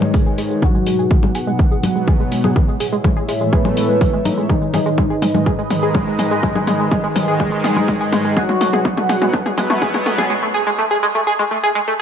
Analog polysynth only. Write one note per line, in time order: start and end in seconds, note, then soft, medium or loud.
0.00 0.53 G#2 medium
0.00 0.53 G#3 loud
0.62 1.98 F#3 medium
0.62 1.98 F#4 loud
3.53 4.40 B3 medium
3.53 4.40 B4 loud
4.50 5.85 D#3 medium
4.50 5.85 D#4 loud
7.40 8.27 G#2 medium
7.40 8.27 G#3 loud
8.37 9.72 F#3 medium
8.37 9.72 F#4 loud